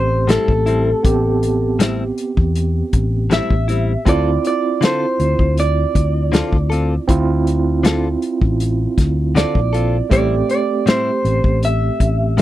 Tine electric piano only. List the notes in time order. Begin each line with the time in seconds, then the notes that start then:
Already playing: A3 C4 G4
1.03 B3 C4 G4
4.05 C4 E4 F4
7.08 C4 E4 F4
10.10 A3 C4 G4